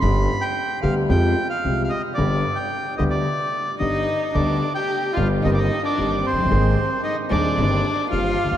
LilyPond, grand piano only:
\new Staff \with { instrumentName = "Grand piano" } { \clef bass \time 4/4 \key g \phrygian \tempo 4 = 112 <g,, g, d g b g'>8 r4 <d, d g b g'>8 <f, f aes c' g'>8 r8 <c, c f aes c' g'>8 r8 | <g,, g, d g b g'>8 r4 <d, d g b g'>8 r4 <g,, g, d g b g'>8 r8 | <d, d g b g'>8 r4 <g,, g, d g b g'>8 <g,, g, ees bes c' g'>8 r8 <g,, g, ees bes c' g'>8 r32 f,,32 fis,,32 g,,32 | <aes,, aes, ees bes c' aes'>8 r4 <ees,, ees, ees bes c' aes'>8 <g,, g, ees bes c' g'>8 r8 <g,, g, ees bes c' g'>8 r32 d,32 ees,32 r32 | }